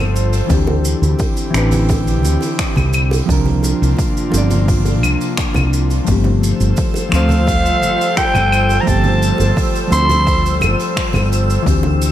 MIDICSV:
0, 0, Header, 1, 7, 480
1, 0, Start_track
1, 0, Tempo, 697674
1, 338, Time_signature, 4, 2, 24, 8
1, 8337, End_track
2, 0, Start_track
2, 0, Title_t, "Synth texture"
2, 0, Program_c, 0, 99
2, 4185, Note_on_c, 0, 88, 80
2, 8337, Note_off_c, 0, 88, 0
2, 8337, End_track
3, 0, Start_track
3, 0, Title_t, "Soprano saxophone"
3, 0, Program_c, 1, 64
3, 4918, Note_on_c, 1, 77, 97
3, 5601, Note_off_c, 1, 77, 0
3, 5624, Note_on_c, 1, 79, 107
3, 6059, Note_on_c, 1, 82, 72
3, 6070, Note_off_c, 1, 79, 0
3, 6111, Note_on_c, 1, 81, 116
3, 6121, Note_off_c, 1, 82, 0
3, 6585, Note_off_c, 1, 81, 0
3, 6828, Note_on_c, 1, 84, 121
3, 7276, Note_off_c, 1, 84, 0
3, 8337, End_track
4, 0, Start_track
4, 0, Title_t, "Analog synth pad"
4, 0, Program_c, 2, 89
4, 0, Note_on_c, 2, 55, 77
4, 0, Note_on_c, 2, 65, 73
4, 0, Note_on_c, 2, 69, 68
4, 0, Note_on_c, 2, 72, 84
4, 312, Note_off_c, 2, 55, 0
4, 312, Note_off_c, 2, 69, 0
4, 312, Note_off_c, 2, 72, 0
4, 314, Note_off_c, 2, 65, 0
4, 351, Note_on_c, 2, 67, 88
4, 353, Note_on_c, 2, 64, 75
4, 356, Note_on_c, 2, 50, 75
4, 356, Note_on_c, 2, 60, 68
4, 2008, Note_off_c, 2, 67, 0
4, 2009, Note_off_c, 2, 64, 0
4, 2010, Note_off_c, 2, 50, 0
4, 2010, Note_off_c, 2, 60, 0
4, 2016, Note_on_c, 2, 65, 93
4, 2019, Note_on_c, 2, 48, 83
4, 2019, Note_on_c, 2, 58, 72
4, 2020, Note_on_c, 2, 62, 77
4, 4155, Note_off_c, 2, 65, 0
4, 4157, Note_off_c, 2, 48, 0
4, 4157, Note_off_c, 2, 58, 0
4, 4158, Note_off_c, 2, 62, 0
4, 4183, Note_on_c, 2, 55, 73
4, 4183, Note_on_c, 2, 65, 75
4, 4184, Note_on_c, 2, 69, 72
4, 4184, Note_on_c, 2, 72, 84
4, 7993, Note_off_c, 2, 55, 0
4, 7993, Note_off_c, 2, 65, 0
4, 7994, Note_off_c, 2, 69, 0
4, 7994, Note_off_c, 2, 72, 0
4, 8020, Note_on_c, 2, 50, 83
4, 8020, Note_on_c, 2, 52, 69
4, 8021, Note_on_c, 2, 67, 87
4, 8022, Note_on_c, 2, 60, 71
4, 8337, Note_off_c, 2, 50, 0
4, 8337, Note_off_c, 2, 52, 0
4, 8337, Note_off_c, 2, 60, 0
4, 8337, Note_off_c, 2, 67, 0
4, 8337, End_track
5, 0, Start_track
5, 0, Title_t, "Hollow-body jazz guitar"
5, 0, Program_c, 3, 26
5, 0, Note_on_c, 3, 53, 96
5, 0, Note_on_c, 3, 57, 81
5, 0, Note_on_c, 3, 60, 86
5, 0, Note_on_c, 3, 72, 100
5, 300, Note_off_c, 3, 53, 0
5, 307, Note_off_c, 3, 57, 0
5, 316, Note_off_c, 3, 60, 0
5, 319, Note_on_c, 3, 52, 82
5, 323, Note_off_c, 3, 72, 0
5, 335, Note_on_c, 3, 60, 75
5, 354, Note_on_c, 3, 62, 76
5, 369, Note_on_c, 3, 67, 91
5, 1020, Note_off_c, 3, 52, 0
5, 1029, Note_off_c, 3, 60, 0
5, 1035, Note_on_c, 3, 52, 92
5, 1038, Note_off_c, 3, 62, 0
5, 1046, Note_off_c, 3, 67, 0
5, 1051, Note_on_c, 3, 60, 82
5, 1068, Note_on_c, 3, 62, 85
5, 1084, Note_on_c, 3, 71, 104
5, 1993, Note_off_c, 3, 52, 0
5, 2000, Note_off_c, 3, 60, 0
5, 2009, Note_off_c, 3, 62, 0
5, 2017, Note_off_c, 3, 71, 0
5, 2240, Note_on_c, 3, 53, 82
5, 2252, Note_on_c, 3, 60, 77
5, 2271, Note_on_c, 3, 62, 78
5, 2286, Note_on_c, 3, 70, 92
5, 2941, Note_off_c, 3, 53, 0
5, 2947, Note_off_c, 3, 60, 0
5, 2956, Note_off_c, 3, 62, 0
5, 2960, Note_on_c, 3, 53, 89
5, 2964, Note_off_c, 3, 70, 0
5, 2979, Note_on_c, 3, 60, 80
5, 2991, Note_on_c, 3, 62, 80
5, 3011, Note_on_c, 3, 74, 93
5, 4141, Note_off_c, 3, 53, 0
5, 4151, Note_off_c, 3, 60, 0
5, 4156, Note_off_c, 3, 62, 0
5, 4158, Note_on_c, 3, 53, 78
5, 4166, Note_off_c, 3, 74, 0
5, 4173, Note_on_c, 3, 57, 75
5, 4189, Note_on_c, 3, 60, 70
5, 4207, Note_on_c, 3, 67, 88
5, 4860, Note_off_c, 3, 53, 0
5, 4867, Note_off_c, 3, 57, 0
5, 4875, Note_off_c, 3, 60, 0
5, 4878, Note_on_c, 3, 53, 92
5, 4884, Note_off_c, 3, 67, 0
5, 4892, Note_on_c, 3, 57, 80
5, 4913, Note_on_c, 3, 60, 82
5, 4927, Note_on_c, 3, 72, 97
5, 6060, Note_off_c, 3, 53, 0
5, 6067, Note_off_c, 3, 57, 0
5, 6074, Note_on_c, 3, 53, 85
5, 6077, Note_off_c, 3, 60, 0
5, 6084, Note_off_c, 3, 72, 0
5, 6094, Note_on_c, 3, 57, 74
5, 6109, Note_on_c, 3, 60, 76
5, 6124, Note_on_c, 3, 67, 86
5, 6778, Note_off_c, 3, 53, 0
5, 6788, Note_off_c, 3, 57, 0
5, 6794, Note_on_c, 3, 53, 96
5, 6795, Note_off_c, 3, 60, 0
5, 6803, Note_off_c, 3, 67, 0
5, 6812, Note_on_c, 3, 57, 82
5, 6829, Note_on_c, 3, 60, 85
5, 6843, Note_on_c, 3, 72, 109
5, 7978, Note_off_c, 3, 53, 0
5, 7987, Note_off_c, 3, 57, 0
5, 7995, Note_off_c, 3, 60, 0
5, 7997, Note_on_c, 3, 52, 89
5, 8002, Note_off_c, 3, 72, 0
5, 8016, Note_on_c, 3, 60, 78
5, 8031, Note_on_c, 3, 62, 75
5, 8049, Note_on_c, 3, 67, 91
5, 8337, Note_off_c, 3, 52, 0
5, 8337, Note_off_c, 3, 60, 0
5, 8337, Note_off_c, 3, 62, 0
5, 8337, Note_off_c, 3, 67, 0
5, 8337, End_track
6, 0, Start_track
6, 0, Title_t, "Fretless electric bass"
6, 0, Program_c, 4, 35
6, 0, Note_on_c, 4, 31, 89
6, 279, Note_off_c, 4, 31, 0
6, 345, Note_on_c, 4, 38, 103
6, 642, Note_off_c, 4, 38, 0
6, 702, Note_on_c, 4, 38, 99
6, 782, Note_off_c, 4, 38, 0
6, 1060, Note_on_c, 4, 33, 87
6, 1541, Note_off_c, 4, 33, 0
6, 1541, Note_on_c, 4, 38, 82
6, 1623, Note_off_c, 4, 38, 0
6, 1903, Note_on_c, 4, 36, 85
6, 2201, Note_off_c, 4, 36, 0
6, 2261, Note_on_c, 4, 36, 100
6, 2561, Note_off_c, 4, 36, 0
6, 2628, Note_on_c, 4, 36, 100
6, 2705, Note_off_c, 4, 36, 0
6, 2982, Note_on_c, 4, 31, 96
6, 3463, Note_off_c, 4, 31, 0
6, 3463, Note_on_c, 4, 36, 84
6, 3545, Note_off_c, 4, 36, 0
6, 3825, Note_on_c, 4, 36, 87
6, 4122, Note_off_c, 4, 36, 0
6, 4182, Note_on_c, 4, 31, 92
6, 4481, Note_off_c, 4, 31, 0
6, 4544, Note_on_c, 4, 31, 99
6, 4623, Note_off_c, 4, 31, 0
6, 4904, Note_on_c, 4, 38, 91
6, 5384, Note_off_c, 4, 38, 0
6, 5384, Note_on_c, 4, 31, 85
6, 5465, Note_off_c, 4, 31, 0
6, 5743, Note_on_c, 4, 31, 94
6, 6041, Note_off_c, 4, 31, 0
6, 6107, Note_on_c, 4, 31, 97
6, 6404, Note_off_c, 4, 31, 0
6, 6464, Note_on_c, 4, 31, 97
6, 6543, Note_off_c, 4, 31, 0
6, 6823, Note_on_c, 4, 38, 90
6, 7306, Note_on_c, 4, 31, 83
6, 7316, Note_off_c, 4, 38, 0
6, 7386, Note_off_c, 4, 31, 0
6, 7663, Note_on_c, 4, 31, 95
6, 7960, Note_off_c, 4, 31, 0
6, 8026, Note_on_c, 4, 38, 102
6, 8323, Note_off_c, 4, 38, 0
6, 8337, End_track
7, 0, Start_track
7, 0, Title_t, "Drums"
7, 109, Note_on_c, 9, 82, 75
7, 178, Note_off_c, 9, 82, 0
7, 224, Note_on_c, 9, 46, 52
7, 226, Note_on_c, 9, 82, 46
7, 293, Note_off_c, 9, 46, 0
7, 295, Note_off_c, 9, 82, 0
7, 341, Note_on_c, 9, 46, 80
7, 341, Note_on_c, 9, 82, 60
7, 344, Note_on_c, 9, 36, 114
7, 410, Note_off_c, 9, 46, 0
7, 410, Note_off_c, 9, 82, 0
7, 412, Note_off_c, 9, 36, 0
7, 459, Note_on_c, 9, 64, 80
7, 462, Note_on_c, 9, 63, 101
7, 464, Note_on_c, 9, 60, 80
7, 527, Note_off_c, 9, 64, 0
7, 531, Note_off_c, 9, 63, 0
7, 533, Note_off_c, 9, 60, 0
7, 583, Note_on_c, 9, 82, 93
7, 652, Note_off_c, 9, 82, 0
7, 709, Note_on_c, 9, 82, 51
7, 778, Note_off_c, 9, 82, 0
7, 816, Note_on_c, 9, 60, 48
7, 819, Note_on_c, 9, 82, 64
7, 823, Note_on_c, 9, 46, 74
7, 823, Note_on_c, 9, 63, 67
7, 824, Note_on_c, 9, 36, 118
7, 885, Note_off_c, 9, 60, 0
7, 888, Note_off_c, 9, 82, 0
7, 891, Note_off_c, 9, 63, 0
7, 892, Note_off_c, 9, 46, 0
7, 893, Note_off_c, 9, 36, 0
7, 941, Note_on_c, 9, 82, 56
7, 1010, Note_off_c, 9, 82, 0
7, 1062, Note_on_c, 9, 26, 76
7, 1065, Note_on_c, 9, 82, 77
7, 1131, Note_off_c, 9, 26, 0
7, 1134, Note_off_c, 9, 82, 0
7, 1175, Note_on_c, 9, 46, 65
7, 1183, Note_on_c, 9, 63, 89
7, 1183, Note_on_c, 9, 64, 91
7, 1184, Note_on_c, 9, 82, 59
7, 1243, Note_off_c, 9, 46, 0
7, 1251, Note_off_c, 9, 63, 0
7, 1251, Note_off_c, 9, 64, 0
7, 1253, Note_off_c, 9, 82, 0
7, 1296, Note_on_c, 9, 46, 79
7, 1304, Note_on_c, 9, 36, 116
7, 1304, Note_on_c, 9, 60, 71
7, 1306, Note_on_c, 9, 82, 61
7, 1364, Note_off_c, 9, 46, 0
7, 1373, Note_off_c, 9, 36, 0
7, 1373, Note_off_c, 9, 60, 0
7, 1375, Note_off_c, 9, 82, 0
7, 1425, Note_on_c, 9, 46, 47
7, 1426, Note_on_c, 9, 82, 50
7, 1494, Note_off_c, 9, 46, 0
7, 1494, Note_off_c, 9, 82, 0
7, 1535, Note_on_c, 9, 63, 65
7, 1546, Note_on_c, 9, 82, 84
7, 1604, Note_off_c, 9, 63, 0
7, 1615, Note_off_c, 9, 82, 0
7, 1656, Note_on_c, 9, 60, 49
7, 1660, Note_on_c, 9, 46, 58
7, 1668, Note_on_c, 9, 82, 50
7, 1725, Note_off_c, 9, 60, 0
7, 1729, Note_off_c, 9, 46, 0
7, 1737, Note_off_c, 9, 82, 0
7, 1781, Note_on_c, 9, 46, 77
7, 1782, Note_on_c, 9, 26, 85
7, 1783, Note_on_c, 9, 36, 116
7, 1788, Note_on_c, 9, 82, 60
7, 1850, Note_off_c, 9, 26, 0
7, 1850, Note_off_c, 9, 46, 0
7, 1852, Note_off_c, 9, 36, 0
7, 1857, Note_off_c, 9, 82, 0
7, 1896, Note_on_c, 9, 64, 79
7, 1899, Note_on_c, 9, 63, 90
7, 1907, Note_on_c, 9, 75, 47
7, 1910, Note_on_c, 9, 82, 43
7, 1965, Note_off_c, 9, 64, 0
7, 1968, Note_off_c, 9, 63, 0
7, 1976, Note_off_c, 9, 75, 0
7, 1979, Note_off_c, 9, 82, 0
7, 2018, Note_on_c, 9, 82, 90
7, 2025, Note_on_c, 9, 75, 73
7, 2087, Note_off_c, 9, 82, 0
7, 2094, Note_off_c, 9, 75, 0
7, 2141, Note_on_c, 9, 60, 86
7, 2148, Note_on_c, 9, 46, 53
7, 2152, Note_on_c, 9, 82, 49
7, 2210, Note_off_c, 9, 60, 0
7, 2217, Note_off_c, 9, 46, 0
7, 2220, Note_off_c, 9, 82, 0
7, 2263, Note_on_c, 9, 36, 112
7, 2269, Note_on_c, 9, 46, 82
7, 2269, Note_on_c, 9, 82, 62
7, 2332, Note_off_c, 9, 36, 0
7, 2338, Note_off_c, 9, 46, 0
7, 2338, Note_off_c, 9, 82, 0
7, 2377, Note_on_c, 9, 63, 85
7, 2383, Note_on_c, 9, 64, 77
7, 2387, Note_on_c, 9, 46, 41
7, 2446, Note_off_c, 9, 63, 0
7, 2452, Note_off_c, 9, 64, 0
7, 2456, Note_off_c, 9, 46, 0
7, 2496, Note_on_c, 9, 60, 53
7, 2504, Note_on_c, 9, 82, 97
7, 2564, Note_off_c, 9, 60, 0
7, 2573, Note_off_c, 9, 82, 0
7, 2630, Note_on_c, 9, 46, 46
7, 2637, Note_on_c, 9, 82, 49
7, 2699, Note_off_c, 9, 46, 0
7, 2705, Note_off_c, 9, 82, 0
7, 2729, Note_on_c, 9, 63, 67
7, 2741, Note_on_c, 9, 46, 77
7, 2742, Note_on_c, 9, 36, 115
7, 2744, Note_on_c, 9, 82, 64
7, 2798, Note_off_c, 9, 63, 0
7, 2810, Note_off_c, 9, 46, 0
7, 2811, Note_off_c, 9, 36, 0
7, 2813, Note_off_c, 9, 82, 0
7, 2870, Note_on_c, 9, 82, 49
7, 2939, Note_off_c, 9, 82, 0
7, 2969, Note_on_c, 9, 60, 75
7, 2985, Note_on_c, 9, 82, 89
7, 3038, Note_off_c, 9, 60, 0
7, 3054, Note_off_c, 9, 82, 0
7, 3096, Note_on_c, 9, 64, 82
7, 3099, Note_on_c, 9, 46, 54
7, 3100, Note_on_c, 9, 63, 99
7, 3101, Note_on_c, 9, 82, 53
7, 3165, Note_off_c, 9, 64, 0
7, 3167, Note_off_c, 9, 46, 0
7, 3169, Note_off_c, 9, 63, 0
7, 3170, Note_off_c, 9, 82, 0
7, 3222, Note_on_c, 9, 36, 118
7, 3222, Note_on_c, 9, 46, 85
7, 3223, Note_on_c, 9, 82, 54
7, 3290, Note_off_c, 9, 46, 0
7, 3291, Note_off_c, 9, 36, 0
7, 3292, Note_off_c, 9, 82, 0
7, 3338, Note_on_c, 9, 60, 48
7, 3340, Note_on_c, 9, 46, 46
7, 3341, Note_on_c, 9, 82, 48
7, 3407, Note_off_c, 9, 60, 0
7, 3409, Note_off_c, 9, 46, 0
7, 3410, Note_off_c, 9, 82, 0
7, 3458, Note_on_c, 9, 63, 66
7, 3462, Note_on_c, 9, 75, 68
7, 3467, Note_on_c, 9, 82, 81
7, 3527, Note_off_c, 9, 63, 0
7, 3531, Note_off_c, 9, 75, 0
7, 3536, Note_off_c, 9, 82, 0
7, 3583, Note_on_c, 9, 46, 56
7, 3583, Note_on_c, 9, 82, 48
7, 3652, Note_off_c, 9, 46, 0
7, 3652, Note_off_c, 9, 82, 0
7, 3698, Note_on_c, 9, 26, 79
7, 3700, Note_on_c, 9, 46, 69
7, 3703, Note_on_c, 9, 36, 107
7, 3704, Note_on_c, 9, 82, 63
7, 3766, Note_off_c, 9, 26, 0
7, 3769, Note_off_c, 9, 46, 0
7, 3771, Note_off_c, 9, 36, 0
7, 3773, Note_off_c, 9, 82, 0
7, 3814, Note_on_c, 9, 60, 74
7, 3818, Note_on_c, 9, 63, 95
7, 3818, Note_on_c, 9, 64, 89
7, 3823, Note_on_c, 9, 82, 49
7, 3824, Note_on_c, 9, 75, 49
7, 3883, Note_off_c, 9, 60, 0
7, 3886, Note_off_c, 9, 64, 0
7, 3887, Note_off_c, 9, 63, 0
7, 3892, Note_off_c, 9, 75, 0
7, 3892, Note_off_c, 9, 82, 0
7, 3944, Note_on_c, 9, 82, 71
7, 4013, Note_off_c, 9, 82, 0
7, 4061, Note_on_c, 9, 82, 46
7, 4065, Note_on_c, 9, 46, 48
7, 4130, Note_off_c, 9, 82, 0
7, 4134, Note_off_c, 9, 46, 0
7, 4171, Note_on_c, 9, 46, 70
7, 4177, Note_on_c, 9, 82, 62
7, 4183, Note_on_c, 9, 36, 104
7, 4239, Note_off_c, 9, 46, 0
7, 4246, Note_off_c, 9, 82, 0
7, 4252, Note_off_c, 9, 36, 0
7, 4291, Note_on_c, 9, 64, 76
7, 4295, Note_on_c, 9, 63, 89
7, 4298, Note_on_c, 9, 60, 50
7, 4360, Note_off_c, 9, 64, 0
7, 4364, Note_off_c, 9, 63, 0
7, 4367, Note_off_c, 9, 60, 0
7, 4427, Note_on_c, 9, 82, 82
7, 4496, Note_off_c, 9, 82, 0
7, 4543, Note_on_c, 9, 82, 51
7, 4612, Note_off_c, 9, 82, 0
7, 4650, Note_on_c, 9, 63, 68
7, 4656, Note_on_c, 9, 82, 60
7, 4658, Note_on_c, 9, 46, 73
7, 4664, Note_on_c, 9, 36, 109
7, 4719, Note_off_c, 9, 63, 0
7, 4725, Note_off_c, 9, 82, 0
7, 4726, Note_off_c, 9, 46, 0
7, 4733, Note_off_c, 9, 36, 0
7, 4775, Note_on_c, 9, 60, 69
7, 4786, Note_on_c, 9, 82, 52
7, 4844, Note_off_c, 9, 60, 0
7, 4855, Note_off_c, 9, 82, 0
7, 4898, Note_on_c, 9, 26, 69
7, 4910, Note_on_c, 9, 82, 87
7, 4967, Note_off_c, 9, 26, 0
7, 4978, Note_off_c, 9, 82, 0
7, 5015, Note_on_c, 9, 64, 83
7, 5017, Note_on_c, 9, 63, 93
7, 5019, Note_on_c, 9, 46, 56
7, 5029, Note_on_c, 9, 82, 47
7, 5084, Note_off_c, 9, 64, 0
7, 5086, Note_off_c, 9, 63, 0
7, 5087, Note_off_c, 9, 46, 0
7, 5098, Note_off_c, 9, 82, 0
7, 5138, Note_on_c, 9, 60, 45
7, 5143, Note_on_c, 9, 36, 117
7, 5145, Note_on_c, 9, 46, 85
7, 5147, Note_on_c, 9, 82, 66
7, 5207, Note_off_c, 9, 60, 0
7, 5211, Note_off_c, 9, 36, 0
7, 5214, Note_off_c, 9, 46, 0
7, 5216, Note_off_c, 9, 82, 0
7, 5266, Note_on_c, 9, 46, 43
7, 5266, Note_on_c, 9, 82, 50
7, 5335, Note_off_c, 9, 46, 0
7, 5335, Note_off_c, 9, 82, 0
7, 5381, Note_on_c, 9, 63, 68
7, 5386, Note_on_c, 9, 82, 82
7, 5450, Note_off_c, 9, 63, 0
7, 5455, Note_off_c, 9, 82, 0
7, 5510, Note_on_c, 9, 46, 53
7, 5513, Note_on_c, 9, 82, 49
7, 5579, Note_off_c, 9, 46, 0
7, 5581, Note_off_c, 9, 82, 0
7, 5621, Note_on_c, 9, 60, 72
7, 5622, Note_on_c, 9, 26, 76
7, 5623, Note_on_c, 9, 36, 107
7, 5626, Note_on_c, 9, 46, 70
7, 5628, Note_on_c, 9, 82, 56
7, 5689, Note_off_c, 9, 60, 0
7, 5691, Note_off_c, 9, 26, 0
7, 5692, Note_off_c, 9, 36, 0
7, 5694, Note_off_c, 9, 46, 0
7, 5697, Note_off_c, 9, 82, 0
7, 5739, Note_on_c, 9, 64, 78
7, 5741, Note_on_c, 9, 75, 55
7, 5746, Note_on_c, 9, 63, 88
7, 5746, Note_on_c, 9, 82, 46
7, 5807, Note_off_c, 9, 64, 0
7, 5810, Note_off_c, 9, 75, 0
7, 5815, Note_off_c, 9, 63, 0
7, 5815, Note_off_c, 9, 82, 0
7, 5865, Note_on_c, 9, 75, 78
7, 5869, Note_on_c, 9, 82, 76
7, 5933, Note_off_c, 9, 75, 0
7, 5937, Note_off_c, 9, 82, 0
7, 5981, Note_on_c, 9, 60, 48
7, 5984, Note_on_c, 9, 46, 45
7, 5987, Note_on_c, 9, 82, 54
7, 6050, Note_off_c, 9, 60, 0
7, 6052, Note_off_c, 9, 46, 0
7, 6056, Note_off_c, 9, 82, 0
7, 6101, Note_on_c, 9, 46, 75
7, 6104, Note_on_c, 9, 36, 103
7, 6106, Note_on_c, 9, 82, 60
7, 6170, Note_off_c, 9, 46, 0
7, 6173, Note_off_c, 9, 36, 0
7, 6174, Note_off_c, 9, 82, 0
7, 6218, Note_on_c, 9, 63, 91
7, 6221, Note_on_c, 9, 64, 76
7, 6222, Note_on_c, 9, 46, 50
7, 6287, Note_off_c, 9, 63, 0
7, 6290, Note_off_c, 9, 64, 0
7, 6291, Note_off_c, 9, 46, 0
7, 6347, Note_on_c, 9, 82, 77
7, 6416, Note_off_c, 9, 82, 0
7, 6455, Note_on_c, 9, 60, 73
7, 6467, Note_on_c, 9, 46, 50
7, 6467, Note_on_c, 9, 82, 53
7, 6523, Note_off_c, 9, 60, 0
7, 6536, Note_off_c, 9, 46, 0
7, 6536, Note_off_c, 9, 82, 0
7, 6580, Note_on_c, 9, 63, 65
7, 6584, Note_on_c, 9, 36, 113
7, 6584, Note_on_c, 9, 46, 75
7, 6590, Note_on_c, 9, 82, 57
7, 6649, Note_off_c, 9, 63, 0
7, 6653, Note_off_c, 9, 36, 0
7, 6653, Note_off_c, 9, 46, 0
7, 6659, Note_off_c, 9, 82, 0
7, 6712, Note_on_c, 9, 82, 48
7, 6780, Note_off_c, 9, 82, 0
7, 6816, Note_on_c, 9, 60, 55
7, 6826, Note_on_c, 9, 82, 80
7, 6885, Note_off_c, 9, 60, 0
7, 6895, Note_off_c, 9, 82, 0
7, 6942, Note_on_c, 9, 46, 67
7, 6945, Note_on_c, 9, 63, 89
7, 6945, Note_on_c, 9, 64, 91
7, 6952, Note_on_c, 9, 82, 54
7, 7011, Note_off_c, 9, 46, 0
7, 7014, Note_off_c, 9, 63, 0
7, 7014, Note_off_c, 9, 64, 0
7, 7021, Note_off_c, 9, 82, 0
7, 7065, Note_on_c, 9, 36, 109
7, 7065, Note_on_c, 9, 46, 83
7, 7068, Note_on_c, 9, 82, 55
7, 7133, Note_off_c, 9, 46, 0
7, 7134, Note_off_c, 9, 36, 0
7, 7137, Note_off_c, 9, 82, 0
7, 7189, Note_on_c, 9, 46, 46
7, 7195, Note_on_c, 9, 82, 48
7, 7258, Note_off_c, 9, 46, 0
7, 7264, Note_off_c, 9, 82, 0
7, 7301, Note_on_c, 9, 60, 83
7, 7305, Note_on_c, 9, 63, 58
7, 7306, Note_on_c, 9, 75, 79
7, 7309, Note_on_c, 9, 82, 71
7, 7369, Note_off_c, 9, 60, 0
7, 7374, Note_off_c, 9, 63, 0
7, 7375, Note_off_c, 9, 75, 0
7, 7377, Note_off_c, 9, 82, 0
7, 7425, Note_on_c, 9, 46, 50
7, 7432, Note_on_c, 9, 82, 49
7, 7493, Note_off_c, 9, 46, 0
7, 7501, Note_off_c, 9, 82, 0
7, 7546, Note_on_c, 9, 36, 98
7, 7548, Note_on_c, 9, 26, 78
7, 7548, Note_on_c, 9, 82, 52
7, 7549, Note_on_c, 9, 46, 82
7, 7615, Note_off_c, 9, 36, 0
7, 7617, Note_off_c, 9, 26, 0
7, 7617, Note_off_c, 9, 46, 0
7, 7617, Note_off_c, 9, 82, 0
7, 7658, Note_on_c, 9, 63, 88
7, 7663, Note_on_c, 9, 60, 52
7, 7665, Note_on_c, 9, 64, 85
7, 7668, Note_on_c, 9, 75, 54
7, 7671, Note_on_c, 9, 82, 42
7, 7727, Note_off_c, 9, 63, 0
7, 7732, Note_off_c, 9, 60, 0
7, 7734, Note_off_c, 9, 64, 0
7, 7736, Note_off_c, 9, 75, 0
7, 7739, Note_off_c, 9, 82, 0
7, 7792, Note_on_c, 9, 82, 76
7, 7861, Note_off_c, 9, 82, 0
7, 7911, Note_on_c, 9, 82, 52
7, 7913, Note_on_c, 9, 46, 49
7, 7979, Note_off_c, 9, 82, 0
7, 7982, Note_off_c, 9, 46, 0
7, 8025, Note_on_c, 9, 36, 105
7, 8025, Note_on_c, 9, 46, 78
7, 8032, Note_on_c, 9, 82, 59
7, 8093, Note_off_c, 9, 46, 0
7, 8094, Note_off_c, 9, 36, 0
7, 8101, Note_off_c, 9, 82, 0
7, 8140, Note_on_c, 9, 60, 82
7, 8142, Note_on_c, 9, 64, 77
7, 8146, Note_on_c, 9, 63, 78
7, 8209, Note_off_c, 9, 60, 0
7, 8211, Note_off_c, 9, 64, 0
7, 8214, Note_off_c, 9, 63, 0
7, 8268, Note_on_c, 9, 82, 88
7, 8336, Note_off_c, 9, 82, 0
7, 8337, End_track
0, 0, End_of_file